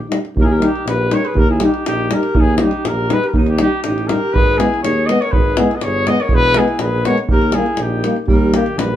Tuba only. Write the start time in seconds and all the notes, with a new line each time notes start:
0.36 D#2
0.85 A#1
1.34 D#2
1.86 A#1
2.36 D#2
2.85 A#1
3.34 D#2
3.84 A1
4.33 G#1
4.82 D#2
5.33 G#1
5.82 G1
6.31 E1
6.80 A#1
7.29 D#2
7.79 A#1
8.27 D#2
8.76 A#1